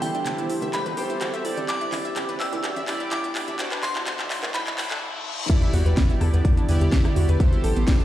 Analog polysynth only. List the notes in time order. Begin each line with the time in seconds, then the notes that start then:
Already playing: G4 A4 C5
0.97 G4 A4 C5
1.45 G4 A4 D5
1.69 E4 G4 D5
2.88 E4 G4 D5
3.59 D4 F#4 C5
4.78 D4 F#4 C5
5.50 E4 G4 D5
6.69 E4 G4 D5
7.40 G4 A4 C5